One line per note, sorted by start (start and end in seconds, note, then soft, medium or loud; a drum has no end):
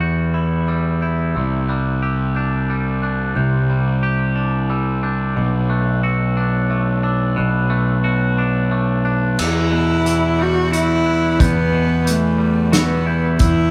0.00 1.02 E2 medium
0.00 1.33 E2 medium
0.00 0.68 G3 medium
0.00 0.33 E4 soft
0.00 1.35 F#4 medium
0.00 0.68 G6 medium
0.34 1.02 E4 soft
0.67 1.69 G3 medium
0.67 1.02 E6 medium
1.01 2.36 E4 soft
1.01 1.35 G6 medium
1.35 3.33 C2 medium
1.35 3.04 C3 medium
1.35 1.69 E6 medium
1.68 2.69 G3 medium
1.68 2.02 F#6 medium
2.03 3.70 G4 soft
2.03 2.36 E6 medium
2.35 3.03 D4 soft
2.35 3.03 G6 medium
2.70 3.69 G3 soft
3.02 4.35 D4 soft
3.02 3.36 F#6 medium
3.36 5.34 C2 medium
3.36 5.04 C3 medium
3.36 4.02 G6 medium
3.70 4.68 G3 medium
4.03 5.37 G4 medium
4.03 4.71 G6 medium
4.36 5.03 D4 soft
4.70 5.37 G3 medium
4.70 5.04 E6 medium
5.03 6.36 D4 medium
5.03 5.38 G6 medium
5.36 7.34 B1 medium
5.36 7.04 B2 medium
5.36 5.71 D6 medium
5.69 6.69 A3 medium
5.69 6.04 F#6 medium
6.03 7.71 F#4 medium
6.03 6.38 E6 medium
6.37 7.02 D4 medium
6.37 7.05 F#6 medium
6.71 7.69 A3 medium
7.03 8.37 D4 medium
7.03 7.38 E6 medium
7.36 9.35 B1 medium
7.36 9.05 B2 medium
7.36 8.03 F#6 medium
7.70 8.70 A3 medium
8.04 9.39 F#4 medium
8.04 8.72 F#6 medium
8.38 9.04 D4 medium
8.71 9.39 A3 medium
8.71 9.06 D6 medium
9.05 9.39 D4 medium
9.05 9.39 F#6 medium
9.39 11.39 E2 medium
9.39 11.36 E2 medium
9.39 10.43 E4 medium
9.39 9.73 E6 medium
9.39 crash medium
9.72 11.40 B2 medium
9.72 10.06 F#6 medium
10.05 12.05 E3 medium
10.05 10.40 E6 medium
10.05 closed hi-hat soft
10.39 12.38 G3 medium
10.39 10.74 F#4 medium
10.39 11.06 G6 medium
10.73 11.43 E4 medium
10.73 12.41 F#4 medium
10.73 closed hi-hat soft
11.06 12.75 E4 medium
11.06 11.40 F#6 medium
11.39 13.38 E2 medium
11.39 13.37 E2 medium
11.39 12.11 B3 medium
11.39 12.04 G6 medium
11.39 kick medium
11.39 closed hi-hat soft
11.72 13.40 B2 medium
12.05 13.71 E3 medium
12.05 12.73 G6 medium
12.05 closed hi-hat medium
12.09 12.76 A3 medium
12.38 13.71 G3 medium
12.72 13.24 B3 medium
12.72 13.71 F#4 medium
12.72 13.07 E6 medium
12.72 snare medium
12.72 closed hi-hat medium
13.06 13.71 E4 medium
13.06 13.41 G6 medium
13.39 13.71 E2 medium
13.39 13.71 E4 medium
13.39 13.71 E6 medium
13.39 kick medium
13.39 closed hi-hat soft